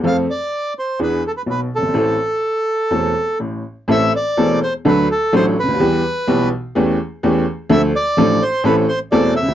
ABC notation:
X:1
M:4/4
L:1/16
Q:1/4=126
K:Am
V:1 name="Bandoneon"
f2 d4 c2 B2 A B B2 A2- | A12 z4 | e2 d4 c2 B2 A2 c2 B2- | B6 z8 z2 |
e2 d4 c2 B2 c2 d2 e2 |]
V:2 name="Upright piano" clef=bass
[F,,F,A,CA]2 z6 [E,,E,B,D^G]2 z2 [B,,,B,,]2 z/2 ^F,,,/2 =G,,,/2 ^G,,,/2 | [A,,,A,,E,A,CA]2 z6 [E,,,E,,E,A,CA]2 z2 [A,,,A,,]2 z2 | [A,,,A,,E,A,CA]2 z2 [E,,,E,,E,A,CA]2 z2 [D,,D,^F,A,DA]2 z2 [A,,,A,,F,A,DA]2 z/2 ^C,,/2 D,,/2 ^D,,/2 | [E,,E,G,B,G]2 z2 [B,,,B,,E,G,B,G]2 z2 [E,,E,A,^CG]2 z2 [E,,E,A,CG]2 z2 |
[D,,D,F,A,DA]2 z2 [A,,,A,,F,A,DA]2 z2 [A,,,A,,E,A,CA]2 z2 [E,,,E,,E,A,CA]2 z/2 ^C,,/2 D,,/2 z/2 |]